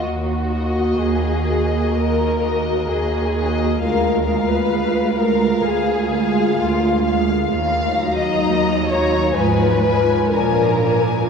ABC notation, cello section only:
X:1
M:4/4
L:1/8
Q:1/4=64
K:Ebm
V:1 name="Cello section" clef=bass
E,,2 E,,2 E,,2 E,,2 | =D,,2 D,,2 D,,2 D,,2 | E,,2 E,,2 A,,2 B,,2 |]